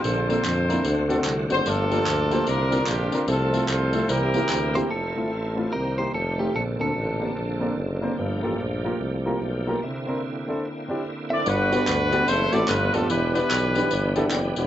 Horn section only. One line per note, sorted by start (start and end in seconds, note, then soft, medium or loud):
0.01 0.29 F4 medium
0.01 0.29 A4 medium
0.01 0.28 C5 medium
0.29 1.07 F4 medium
0.29 1.07 A4 medium
0.29 1.06 C5 medium
1.52 1.66 C5 loud
1.66 2.43 D4 medium
1.66 2.44 F4 medium
1.66 2.48 A4 loud
2.48 2.87 D4 medium
2.48 3.25 F4 medium
2.48 2.88 A#4 loud
2.88 3.26 A#3 medium
2.88 3.26 D4 medium
2.88 3.26 G4 medium
3.29 4.06 C4 medium
3.29 3.68 F4 medium
3.29 3.69 A4 medium
3.70 4.07 F4 medium
3.70 4.07 A4 medium
3.70 4.10 C5 medium
4.10 4.87 E4 medium
4.10 4.88 G4 medium
4.10 4.75 A#4 loud
11.33 11.47 D5 medium
11.47 12.24 D4 medium
11.47 12.24 F#4 medium
11.47 12.29 B4 loud
12.29 12.66 E4 medium
12.29 12.67 A4 medium
12.29 12.53 C5 loud
12.52 12.68 D5 loud
12.68 13.07 D4 medium
12.68 13.07 F4 medium
12.68 12.94 B4 loud
12.93 13.09 A4 medium
13.09 13.34 D4 medium
13.09 13.33 G4 medium
13.09 13.33 B4 medium
13.34 14.12 D4 medium
13.34 14.12 G4 medium
13.34 14.12 B4 medium